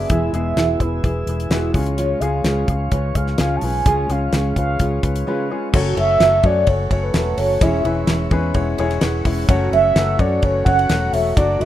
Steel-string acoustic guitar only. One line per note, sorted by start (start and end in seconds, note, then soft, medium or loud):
0.00 0.10 D4 medium
0.10 0.34 E3 medium
0.10 0.34 B3 loud
0.10 0.34 E4 medium
0.10 0.32 G#4 loud
0.33 0.56 B3 soft
0.33 0.57 E4 medium
0.33 0.57 G#4 medium
0.57 0.80 E3 medium
0.57 0.81 B3 medium
0.57 0.80 E4 medium
0.57 0.79 G#4 medium
0.80 1.03 B3 soft
0.80 1.03 E4 soft
0.80 1.04 G#4 medium
1.03 1.50 E3 medium
1.03 1.50 B3 medium
1.03 1.51 E4 medium
1.03 1.52 G#4 medium
1.51 1.74 E3 medium
1.51 1.75 B3 medium
1.51 1.75 E4 medium
1.51 1.72 G#4 loud
1.74 1.97 C#4 soft
1.74 1.97 F4 medium
1.74 1.98 G#4 medium
1.97 2.21 C#3 medium
1.97 2.21 G#3 medium
1.97 2.22 C#4 medium
1.97 2.21 F4 loud
1.97 2.20 G#4 medium
2.21 2.44 C#4 soft
2.21 2.44 F4 medium
2.21 2.44 G#4 medium
2.44 2.68 C#3 medium
2.44 2.68 G#3 medium
2.44 2.69 C#4 medium
2.44 2.68 F4 medium
2.44 2.67 G#4 loud
2.68 2.91 C#4 soft
2.68 2.92 F4 soft
2.68 2.92 G#4 medium
2.92 3.38 G#3 medium
2.92 3.39 C#4 medium
2.92 3.39 F4 medium
2.92 3.39 G#4 medium
3.39 3.62 C#3 medium
3.39 3.63 G#3 medium
3.39 3.63 C#4 medium
3.39 3.62 F4 loud
3.39 3.61 G#4 loud
3.62 3.85 C#4 soft
3.62 3.86 F4 soft
3.62 3.86 G#4 medium
3.86 4.09 C#3 medium
3.86 4.09 G#3 loud
3.86 4.10 C#4 loud
3.86 4.09 F4 loud
3.86 4.08 G#4 loud
4.09 4.33 C#4 soft
4.09 4.33 F4 medium
4.09 4.33 G#4 medium
4.33 4.56 C#3 medium
4.33 4.57 G#3 medium
4.33 4.57 C#4 medium
4.33 4.57 F4 medium
4.33 4.55 G#4 loud
4.57 4.79 C#4 soft
4.57 4.79 F4 medium
4.57 4.80 G#4 medium
4.79 5.26 G#3 medium
4.79 5.27 C#4 medium
4.79 5.26 F4 medium
4.79 5.27 G#4 medium
5.27 5.50 C#3 medium
5.27 5.50 G#3 medium
5.27 5.50 C#4 medium
5.27 5.50 F4 loud
5.27 5.49 G#4 loud
5.50 5.74 C#4 medium
5.50 5.74 F4 medium
5.50 5.73 G#4 medium
5.73 5.97 F#2 medium
5.73 5.97 C#3 medium
5.73 5.97 F#3 loud
5.73 5.97 A3 medium
5.73 5.96 F#4 loud
5.73 5.96 A4 loud
5.97 6.19 F#3 medium
5.97 6.20 A3 soft
5.97 6.21 F#4 medium
5.97 6.20 A4 medium
6.20 6.44 F#3 medium
6.20 6.44 A3 medium
6.20 6.43 F#4 medium
6.20 6.42 A4 medium
6.44 6.91 F#3 soft
6.44 6.90 A3 soft
6.44 6.90 F#4 medium
6.44 6.89 A4 medium
6.90 7.12 F#3 medium
6.90 7.14 A3 medium
6.90 7.14 F#4 medium
6.90 7.14 A4 medium
7.14 7.60 F#3 medium
7.14 7.61 A3 medium
7.14 7.61 F#4 medium
7.14 7.62 A4 medium
7.61 7.84 E3 medium
7.61 7.85 C#4 loud
7.61 7.84 E4 loud
7.61 7.83 G#4 loud
7.84 8.07 C#4 medium
7.84 8.08 E4 medium
7.84 8.08 G#4 medium
8.07 8.31 E3 medium
8.07 8.31 C#4 medium
8.07 8.31 E4 medium
8.07 8.29 G#4 medium
8.31 8.80 C#4 medium
8.31 8.78 E4 medium
8.31 8.77 G#4 medium
8.78 9.00 C#4 medium
8.78 9.01 E4 medium
8.78 9.01 G#4 medium
9.01 9.48 E3 medium
9.01 9.49 C#4 medium
9.01 9.49 E4 medium
9.01 9.49 G#4 medium
9.48 9.72 F#2 loud
9.48 9.72 C#3 loud
9.48 9.72 F#3 loud
9.48 9.72 A3 loud
9.48 9.71 C#4 medium
9.48 9.70 F#4 loud
9.71 9.94 F#3 medium
9.71 9.95 A3 medium
9.71 9.96 C#4 medium
9.71 9.95 F#4 medium
9.95 10.19 F#3 medium
9.95 10.19 A3 medium
9.95 10.18 C#4 medium
9.95 10.17 F#4 medium
10.18 10.67 F#3 soft
10.18 10.67 A3 medium
10.18 10.65 C#4 medium
10.18 10.65 F#4 medium
10.65 10.88 F#3 soft
10.65 10.89 A3 medium
10.65 10.89 C#4 medium
10.65 10.89 F#4 medium
10.89 11.36 F#3 medium
10.89 11.37 A3 medium
10.89 11.37 C#4 medium
10.89 11.38 F#4 medium
11.37 11.60 F#3 medium
11.37 11.60 A3 loud
11.37 11.60 D4 loud
11.37 11.59 F#4 loud
11.60 11.65 D4 medium
11.60 11.65 F#4 medium